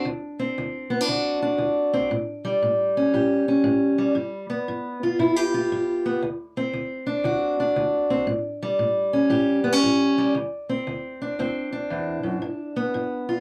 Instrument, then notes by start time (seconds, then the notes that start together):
steel-string acoustic guitar
0.05 D2
0.39 C4
0.58 D2
0.90 B3
1.01 D4
1.08 D2 F#4
1.42 D4
1.58 D2
1.93 C4
2.11 A2
2.45 G3
2.62 A2
2.97 C#4
3.14 A2 G4
3.48 C#4
3.64 A2
3.98 G3
4.15 G2
4.50 B3
4.68 G2
5.03 F4
5.19 G2 E4
5.36 G4
5.54 F4
5.72 G2
6.06 B3
6.22 D2
6.57 C4
6.73 D2
7.07 D4
7.24 D2 F#4
7.60 D4
7.76 D2
8.10 C4
8.27 A2
8.62 G3
8.79 A2
9.13 C#4
9.30 A2 G4
9.64 B3
9.73 C#4
9.83 A2
10.18 G3
10.35 D2
10.69 C4
10.87 D2
11.22 D4
11.39 D2 C4
11.72 D4
11.90 E2
12.23 F#2
12.42 G2
12.76 B3
12.94 G2
13.29 F4